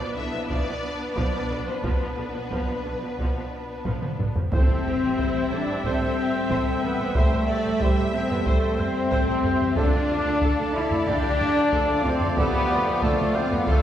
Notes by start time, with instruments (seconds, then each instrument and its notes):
Already playing: viola section B3, french horn section D4, violin section D4 B4 D5
0.00 viola section F3
0.16 double bass section B1, cello section B2, viola section D3, french horn section E4, violin section E5
0.33 cello section B2, viola section F3
0.49 double bass section B1, cello section B2, viola section F3, french horn section D4, violin section D5, taiko
0.66 cello section B2, viola section F3
1.15 double bass section B1, cello section B2, viola section F3, french horn section D4, violin section D5, taiko
1.32 cello section B2, viola section F3
1.49 double bass section B1, cello section B2, viola section D3
1.66 cello section B2, viola section F3, french horn section C4, violin section C5
1.82 double bass section B1, cello section B2, viola section F3, french horn section B3, violin section B4, taiko
2.00 cello section B2, viola section F3
2.17 double bass section B1, cello section B2, viola section D3
2.34 cello section B2, viola section F3
2.51 double bass section B1, cello section B2, viola section F3, taiko
2.68 cello section B2, viola section F3
2.84 double bass section B1, cello section B2, viola section D3
3.01 cello section B2, viola section F3
3.18 double bass section B1, cello section B2, viola section F3, taiko
3.35 cello section B2, viola section F3
3.85 double bass section B1, cello section B2, viola section F3, taiko low-mid
4.01 cello section B2, viola section F3, taiko mid
4.18 double bass section B1, cello section B2, viola section D3, taiko low-mid
4.35 cello section B2, viola section F3, taiko low
4.51 double bass section A1, timpani A2, trombone section G3 A3, cello section C4, french horn section C4, violin section A4 G5, viola section C5 E5, flute C5, trumpet E5, taiko, impact
4.68 double bass section A1, viola section C5
4.86 double bass section A1, violin section G4, viola section A4
5.01 double bass section A1, viola section C5
5.17 double bass section A1, violin section E4, viola section C5, taiko
5.34 double bass section A1, viola section C5
5.51 double bass section A1, french horn section D4, cello section D4, viola section A4, flute D5
5.67 double bass section A1, viola section C5
5.84 double bass section A1, cello section C4, french horn section C4, violin section A4, viola section C5, flute C5, taiko
6.00 double bass section A1, viola section C5
6.18 violin section G4
6.50 double bass section A1, violin section A4, viola section C5, taiko
6.67 double bass section A1, viola section C5
6.82 double bass section A1, cello section B3, french horn section B3, viola section A4, violin section B4, flute B4
6.99 double bass section A1, viola section C5
7.15 double bass section A1, cello section A3, french horn section A3, flute A4, viola section C5, violin section C5, taiko
7.31 double bass section A1, flute B4, viola section C5
7.39 flute A4
7.47 double bass section A1, viola section A4, violin section D5
7.52 flute G4
7.56 flute A4
7.64 double bass section A1, viola section C5
7.80 double bass section A1, french horn section G3, cello section G3, flute G4, viola section C5, violin section E5, taiko
7.98 double bass section A1, viola section C5
8.13 double bass section A1, french horn section C4, cello section C4, viola section A4, flute C5
8.29 double bass section A1, cello section B3, french horn section B3, flute B4, viola section C5, taiko low
8.46 double bass section A1, cello section A3, french horn section A3, flute A4, violin section C5, viola section C5, taiko
8.62 double bass section A1, viola section C5
8.78 french horn section C4, cello section C4, flute C5, taiko low
9.10 double bass section A1, violin section A4, viola section C5, taiko
9.28 double bass section A1, viola section C5
9.42 double bass section A1, violin section G4, viola section A4, taiko low
9.60 double bass section A1, viola section C5, taiko low
9.75 double bass section D2, trombone section F3 A3, french horn section D4, cello section D4, violin section F4 F5, viola section A4 D5, trumpet D5, flute D5, taiko
9.93 double bass section D2, viola section A4
10.09 double bass section D2, viola section F4
10.25 double bass section D2, viola section A4
10.41 double bass section D2, violin section A4, viola section A4, taiko
10.58 double bass section D2, viola section A4
10.74 double bass section D2, french horn section E4, cello section E4, viola section F4, flute E5
10.90 double bass section D2, viola section A4, taiko low
11.07 double bass section D2, cello section D4, french horn section D4, violin section G4, viola section A4, flute D5, taiko
11.23 double bass section D2, viola section A4
11.41 taiko low
11.72 double bass section D2, violin section F4, viola section A4, taiko
11.89 double bass section D2, viola section A4
12.03 double bass section D2, french horn section C4, cello section C4, viola section F4, violin section A4, flute C5, taiko low
12.21 double bass section D2, viola section A4, taiko low
12.36 double bass section D2, french horn section B3, cello section B3, violin section G4, viola section A4, flute B4, taiko
12.54 double bass section D2, viola section A4
12.69 double bass section D2, viola section F4
12.85 double bass section D2, viola section A4
13.01 double bass section D2, french horn section A3, cello section A3, violin section F4, viola section A4, flute A4, taiko
13.18 double bass section D2, viola section A4
13.33 double bass section D2, cello section C4, french horn section C4, viola section F4, flute C5
13.50 double bass section D2, cello section B3, french horn section B3, viola section A4, flute B4, taiko low
13.66 double bass section D2, french horn section A3, cello section A3, violin section F4, viola section A4, flute A4, taiko